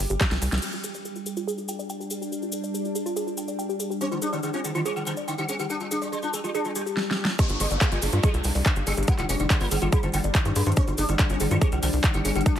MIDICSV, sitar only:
0, 0, Header, 1, 2, 480
1, 0, Start_track
1, 0, Tempo, 422535
1, 715, Time_signature, 4, 2, 24, 8
1, 14308, End_track
2, 0, Start_track
2, 0, Title_t, "Sitar"
2, 0, Program_c, 0, 104
2, 4555, Note_on_c, 0, 60, 98
2, 4624, Note_off_c, 0, 60, 0
2, 4675, Note_on_c, 0, 50, 61
2, 4743, Note_off_c, 0, 50, 0
2, 4794, Note_on_c, 0, 62, 92
2, 4863, Note_off_c, 0, 62, 0
2, 4915, Note_on_c, 0, 50, 64
2, 4983, Note_off_c, 0, 50, 0
2, 5035, Note_on_c, 0, 50, 62
2, 5103, Note_off_c, 0, 50, 0
2, 5155, Note_on_c, 0, 60, 93
2, 5223, Note_off_c, 0, 60, 0
2, 5275, Note_on_c, 0, 50, 61
2, 5344, Note_off_c, 0, 50, 0
2, 5395, Note_on_c, 0, 50, 62
2, 5463, Note_off_c, 0, 50, 0
2, 5515, Note_on_c, 0, 60, 90
2, 5583, Note_off_c, 0, 60, 0
2, 5635, Note_on_c, 0, 50, 65
2, 5704, Note_off_c, 0, 50, 0
2, 5755, Note_on_c, 0, 50, 65
2, 5824, Note_off_c, 0, 50, 0
2, 5995, Note_on_c, 0, 50, 64
2, 6064, Note_off_c, 0, 50, 0
2, 6115, Note_on_c, 0, 50, 64
2, 6183, Note_off_c, 0, 50, 0
2, 6235, Note_on_c, 0, 60, 87
2, 6304, Note_off_c, 0, 60, 0
2, 6354, Note_on_c, 0, 50, 62
2, 6423, Note_off_c, 0, 50, 0
2, 6475, Note_on_c, 0, 62, 103
2, 6543, Note_off_c, 0, 62, 0
2, 6595, Note_on_c, 0, 55, 64
2, 6664, Note_off_c, 0, 55, 0
2, 6715, Note_on_c, 0, 62, 92
2, 6784, Note_off_c, 0, 62, 0
2, 6835, Note_on_c, 0, 55, 64
2, 6904, Note_off_c, 0, 55, 0
2, 6955, Note_on_c, 0, 55, 64
2, 7024, Note_off_c, 0, 55, 0
2, 7075, Note_on_c, 0, 62, 89
2, 7144, Note_off_c, 0, 62, 0
2, 7195, Note_on_c, 0, 55, 64
2, 7264, Note_off_c, 0, 55, 0
2, 7315, Note_on_c, 0, 55, 63
2, 7383, Note_off_c, 0, 55, 0
2, 7436, Note_on_c, 0, 62, 91
2, 7504, Note_off_c, 0, 62, 0
2, 7555, Note_on_c, 0, 55, 62
2, 7624, Note_off_c, 0, 55, 0
2, 7676, Note_on_c, 0, 55, 65
2, 7744, Note_off_c, 0, 55, 0
2, 8395, Note_on_c, 0, 55, 101
2, 8464, Note_off_c, 0, 55, 0
2, 8515, Note_on_c, 0, 43, 66
2, 8584, Note_off_c, 0, 43, 0
2, 8635, Note_on_c, 0, 55, 93
2, 8703, Note_off_c, 0, 55, 0
2, 8755, Note_on_c, 0, 43, 65
2, 8824, Note_off_c, 0, 43, 0
2, 8876, Note_on_c, 0, 43, 65
2, 8944, Note_off_c, 0, 43, 0
2, 8995, Note_on_c, 0, 55, 96
2, 9064, Note_off_c, 0, 55, 0
2, 9115, Note_on_c, 0, 43, 63
2, 9184, Note_off_c, 0, 43, 0
2, 9235, Note_on_c, 0, 43, 64
2, 9304, Note_off_c, 0, 43, 0
2, 9355, Note_on_c, 0, 55, 94
2, 9424, Note_off_c, 0, 55, 0
2, 9475, Note_on_c, 0, 43, 65
2, 9544, Note_off_c, 0, 43, 0
2, 9595, Note_on_c, 0, 43, 64
2, 9664, Note_off_c, 0, 43, 0
2, 9835, Note_on_c, 0, 43, 64
2, 9904, Note_off_c, 0, 43, 0
2, 9955, Note_on_c, 0, 43, 64
2, 10024, Note_off_c, 0, 43, 0
2, 10075, Note_on_c, 0, 55, 89
2, 10144, Note_off_c, 0, 55, 0
2, 10195, Note_on_c, 0, 43, 65
2, 10264, Note_off_c, 0, 43, 0
2, 10315, Note_on_c, 0, 58, 105
2, 10383, Note_off_c, 0, 58, 0
2, 10434, Note_on_c, 0, 50, 66
2, 10503, Note_off_c, 0, 50, 0
2, 10555, Note_on_c, 0, 60, 96
2, 10624, Note_off_c, 0, 60, 0
2, 10675, Note_on_c, 0, 50, 66
2, 10743, Note_off_c, 0, 50, 0
2, 10794, Note_on_c, 0, 50, 64
2, 10863, Note_off_c, 0, 50, 0
2, 10914, Note_on_c, 0, 58, 97
2, 10983, Note_off_c, 0, 58, 0
2, 11035, Note_on_c, 0, 50, 64
2, 11103, Note_off_c, 0, 50, 0
2, 11154, Note_on_c, 0, 50, 65
2, 11223, Note_off_c, 0, 50, 0
2, 11274, Note_on_c, 0, 58, 98
2, 11343, Note_off_c, 0, 58, 0
2, 11394, Note_on_c, 0, 50, 67
2, 11463, Note_off_c, 0, 50, 0
2, 11514, Note_on_c, 0, 50, 64
2, 11583, Note_off_c, 0, 50, 0
2, 11755, Note_on_c, 0, 50, 65
2, 11823, Note_off_c, 0, 50, 0
2, 11875, Note_on_c, 0, 50, 65
2, 11944, Note_off_c, 0, 50, 0
2, 11995, Note_on_c, 0, 58, 90
2, 12064, Note_off_c, 0, 58, 0
2, 12115, Note_on_c, 0, 50, 65
2, 12183, Note_off_c, 0, 50, 0
2, 12235, Note_on_c, 0, 60, 104
2, 12304, Note_off_c, 0, 60, 0
2, 12355, Note_on_c, 0, 50, 65
2, 12424, Note_off_c, 0, 50, 0
2, 12475, Note_on_c, 0, 62, 98
2, 12544, Note_off_c, 0, 62, 0
2, 12595, Note_on_c, 0, 50, 66
2, 12664, Note_off_c, 0, 50, 0
2, 12835, Note_on_c, 0, 60, 95
2, 12904, Note_off_c, 0, 60, 0
2, 12955, Note_on_c, 0, 50, 65
2, 13024, Note_off_c, 0, 50, 0
2, 13075, Note_on_c, 0, 50, 63
2, 13144, Note_off_c, 0, 50, 0
2, 13195, Note_on_c, 0, 60, 94
2, 13264, Note_off_c, 0, 60, 0
2, 13315, Note_on_c, 0, 50, 67
2, 13384, Note_off_c, 0, 50, 0
2, 13435, Note_on_c, 0, 50, 64
2, 13504, Note_off_c, 0, 50, 0
2, 13675, Note_on_c, 0, 50, 64
2, 13744, Note_off_c, 0, 50, 0
2, 13796, Note_on_c, 0, 50, 65
2, 13864, Note_off_c, 0, 50, 0
2, 13915, Note_on_c, 0, 60, 89
2, 13984, Note_off_c, 0, 60, 0
2, 14035, Note_on_c, 0, 50, 66
2, 14104, Note_off_c, 0, 50, 0
2, 14155, Note_on_c, 0, 62, 104
2, 14224, Note_off_c, 0, 62, 0
2, 14308, End_track
0, 0, End_of_file